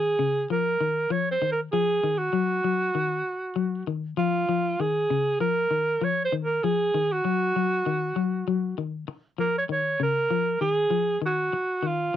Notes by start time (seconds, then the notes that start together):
Already playing: D#3 G#4
0.19 C#3
0.50 F3 A#4
0.81 D#3
1.10 F3 C#5
1.31 C5
1.42 D#3
1.52 A#4
1.72 F3 G#4
2.04 D#3
2.18 F#4
2.33 F#3
2.64 F#3
2.95 D#3
3.56 F#3
3.87 D#3
4.17 F3 F4
4.49 F3
4.80 D#3 G#4
5.10 C#3
5.40 F3 A#4
5.71 D#3
6.01 F3 C#5
6.25 C5
6.32 D#3
6.45 A#4
6.64 F3 G#4
6.94 D#3
7.12 F#4
7.25 F#3
7.56 F#3
7.86 D#3
8.16 F#3
8.48 F#3
8.78 D#3
9.08 muted clean electric guitar stroke
9.38 F3 A#4
9.58 C#5
9.69 D#3 C#5
10.00 C#3 A#4
10.31 F3
10.61 D#3 G#4
10.90 F3
11.22 D#3
11.26 F#4
11.53 muted clean electric guitar stroke
11.83 D#3
11.87 F4